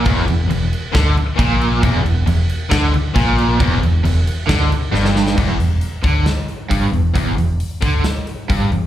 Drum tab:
CC |x-x-x-x-x-x-x-x-|x-x-x-x-x-x-x-x-|x-x-x-x-x-x-----|x---------------|
HH |----------------|----------------|----------------|--o-o-o-o-o-o-o-|
SD |--------o-------|--------o-------|--------o---oooo|--------o-------|
BD |o-------o---o---|o-------o---o---|o-------o-------|o-----o-----o---|

CC |----------------|
HH |o-o-o-o-o-o-o-o-|
SD |--------o-------|
BD |o-----o-----o---|